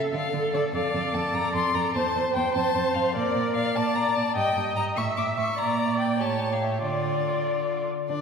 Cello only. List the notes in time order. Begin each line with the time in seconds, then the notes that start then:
0.13 D3
0.33 D3
0.53 D3
0.74 F2
0.94 F2
1.13 F2
1.34 F2
1.54 F2
1.75 F2
1.95 E2
2.15 E2
2.36 E2
2.56 F2
2.75 F2
2.96 F2
3.15 A#2
3.36 A#2
3.56 A#2
3.76 A#2
3.96 A#2
4.16 A#2
4.36 G2
4.56 G2
4.76 G2
4.97 A2
5.17 A2
5.37 A2
5.58 A#2
6.20 A2
6.83 D3
8.09 D3